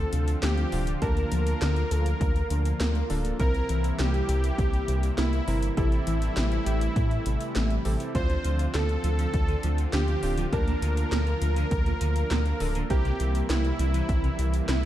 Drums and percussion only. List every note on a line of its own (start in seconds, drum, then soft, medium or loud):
0.13 closed hi-hat medium
0.28 closed hi-hat medium
0.43 snare loud
0.43 clap loud
0.43 closed hi-hat medium
0.58 closed hi-hat soft
0.72 open hi-hat medium
0.87 closed hi-hat medium
1.02 kick loud
1.02 closed hi-hat medium
1.17 closed hi-hat soft
1.32 closed hi-hat loud
1.47 closed hi-hat medium
1.62 snare loud
1.62 clap medium
1.62 closed hi-hat medium
1.76 closed hi-hat soft
1.91 closed hi-hat loud
2.06 closed hi-hat medium
2.21 kick loud
2.21 closed hi-hat medium
2.36 closed hi-hat soft
2.50 closed hi-hat loud
2.65 closed hi-hat medium
2.80 snare loud
2.80 clap medium
2.80 closed hi-hat medium
2.95 closed hi-hat soft
3.10 open hi-hat medium
3.25 closed hi-hat medium
3.40 kick loud
3.40 closed hi-hat medium
3.54 closed hi-hat soft
3.69 closed hi-hat loud
3.84 closed hi-hat medium
3.99 snare loud
3.99 clap medium
3.99 closed hi-hat medium
4.14 closed hi-hat soft
4.29 closed hi-hat medium
4.44 closed hi-hat medium
4.58 kick loud
4.58 closed hi-hat medium
4.73 closed hi-hat soft
4.88 closed hi-hat loud
5.03 closed hi-hat medium
5.18 snare loud
5.18 clap medium
5.18 closed hi-hat medium
5.33 closed hi-hat soft
5.48 open hi-hat medium
5.63 closed hi-hat medium
5.77 kick loud
5.77 closed hi-hat medium
5.92 closed hi-hat soft
6.07 closed hi-hat medium
6.22 closed hi-hat medium
6.37 snare loud
6.37 clap medium
6.37 closed hi-hat soft
6.52 closed hi-hat soft
6.66 closed hi-hat medium
6.81 closed hi-hat medium
6.96 kick loud
6.96 closed hi-hat medium
7.11 closed hi-hat soft
7.26 closed hi-hat medium
7.41 closed hi-hat medium
7.55 snare loud
7.55 clap medium
7.55 closed hi-hat medium
7.70 closed hi-hat soft
7.85 open hi-hat medium
8.00 closed hi-hat medium
8.15 kick loud
8.15 closed hi-hat medium
8.30 closed hi-hat soft
8.45 closed hi-hat medium
8.59 closed hi-hat medium
8.74 snare loud
8.74 clap medium
8.74 closed hi-hat soft
8.89 closed hi-hat soft
9.04 closed hi-hat medium
9.19 closed hi-hat medium
9.34 kick loud
9.34 closed hi-hat medium
9.48 closed hi-hat soft
9.63 closed hi-hat medium
9.78 closed hi-hat soft
9.93 snare loud
9.93 clap medium
9.93 closed hi-hat soft
10.08 closed hi-hat soft
10.23 open hi-hat medium
10.38 closed hi-hat medium
10.53 kick loud
10.53 closed hi-hat medium
10.68 closed hi-hat soft
10.82 closed hi-hat medium
10.97 closed hi-hat medium
11.12 snare loud
11.12 clap medium
11.12 closed hi-hat soft
11.27 closed hi-hat soft
11.42 closed hi-hat medium
11.56 closed hi-hat medium
11.71 kick loud
11.71 closed hi-hat medium
11.86 closed hi-hat soft
12.01 closed hi-hat medium
12.16 closed hi-hat medium
12.31 snare loud
12.31 clap medium
12.31 closed hi-hat soft
12.46 closed hi-hat soft
12.60 open hi-hat medium
12.75 closed hi-hat medium
12.90 kick loud
12.90 closed hi-hat medium
13.05 closed hi-hat soft
13.20 closed hi-hat medium
13.35 closed hi-hat medium
13.50 snare loud
13.50 clap loud
13.50 closed hi-hat soft
13.65 closed hi-hat soft
13.79 closed hi-hat medium
13.94 closed hi-hat medium
14.09 kick loud
14.09 closed hi-hat medium
14.24 closed hi-hat soft
14.39 closed hi-hat medium
14.54 closed hi-hat medium
14.69 snare loud
14.69 clap medium
14.69 closed hi-hat medium